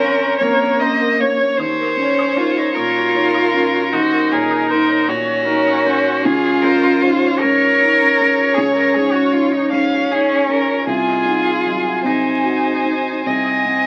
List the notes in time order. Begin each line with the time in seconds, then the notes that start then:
Already playing: A#1 F2 A#3 C#4 A#4 C5
0.01 C#4 F5
0.21 A#5
0.38 F2 A#3 A#4 C#5
0.61 C#5
0.79 C#4 C5 D#5 A#5
1.01 A#4
1.19 A#3 C#5 F5
1.40 C#5
1.57 D#2 D#4 C5 C#5
1.80 A#4
1.97 C#4 C#5
2.19 D#4
2.36 D#4 F4 A#4
2.57 D#4 C#5
2.74 A#2 D#4 F4 A#4
2.96 F#4
3.14 D#4 C#5
3.34 D#4
3.54 C#4 A#4
3.74 F#4
3.92 D#2 D#4 F#4 C5
4.12 A#4
4.31 A#2 G#4 A#4 C#5
4.51 D#4
4.70 D#4 A#4 C5
4.89 C#5
5.08 A#2 C#4 D#4 F#4 C#5
5.27 F#4
5.46 D#4 A#4 C#5
5.67 D#4
5.85 C#4 A#4 C5
6.05 F#4
6.22 C#2 C#4 F4 G#4 C#5
6.43 G#4
6.62 C#4 A#4 C5 C#5
6.82 C#4
7.02 D#4 G#4 C5 C#5
7.22 C#5
7.41 G#2 C#4 A#4 C#5
7.61 F4
7.80 D#4 C#5
8.00 C#4
8.19 C#4 G#4
8.38 F4
8.54 C#2 C#4 G#4 C#5
8.74 G#4 A#4
8.94 G#2 G#4 C#5
9.13 C#4 F#4
9.32 D#4 F4 G#4
9.52 D#4 C#5
9.71 G#2 C#4 C#5 F5
9.93 F4
10.11 D#4 G#4 C#5
10.31 C#4
10.49 C#4 G#4 A#4
10.71 F4
10.86 C2 F4 G#4 G#5
11.09 D#5
11.25 D#4 F#5
11.48 G#4
11.66 F#3 D#5
11.87 F#5
12.04 C3 D#4 G#4 C5 G#5
12.26 C5
12.44 F#4 F#5
12.65 G#4
12.85 D#4 D#5
13.05 C5
13.25 C2 C4 G#4 D#5 G#5
13.46 D#5
13.65 C3 F#5